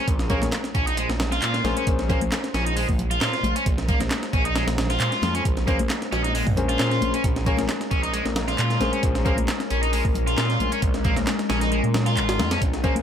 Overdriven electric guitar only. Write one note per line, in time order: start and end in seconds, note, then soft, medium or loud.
0.30 0.39 A#3 medium
0.75 0.86 C#4 loud
0.87 0.95 D#4 medium
0.98 1.07 G#3 loud
1.32 1.75 F4 loud
1.77 1.85 C#4 medium
2.10 2.19 A#3 loud
2.54 2.65 C#4 loud
2.66 2.74 D#4 medium
2.76 2.86 G#3 loud
3.11 3.54 F4 loud
3.56 3.64 C#4 medium
3.89 3.98 A#3 loud
4.33 4.44 C#4 medium
4.46 4.54 D#4 medium
4.56 4.65 G#3 loud
4.90 5.33 F4 loud
5.35 5.43 C#4 medium
5.67 5.77 A#3 loud
6.12 6.23 C#4 loud
6.24 6.32 D#4 medium
6.34 6.44 G#3 loud
6.69 7.12 F4 loud
7.14 7.22 C#4 medium
7.46 7.56 A#3 loud
7.91 8.02 C#4 loud
8.03 8.11 D#4 medium
8.13 8.23 G#3 loud
8.48 8.92 F4 loud
8.93 9.01 C#4 medium
9.26 9.35 A#3 loud
9.71 9.81 C#4 loud
9.83 9.91 D#4 medium
9.93 10.02 G#3 loud
10.27 10.71 F4 loud
10.72 10.80 C#4 medium
11.05 11.14 A#3 loud
11.50 11.60 C#4 medium
11.62 11.70 D#4 medium
11.72 11.81 G#3 loud
12.06 12.50 F4 loud
12.51 12.59 C#4 medium
12.84 12.93 A#3 medium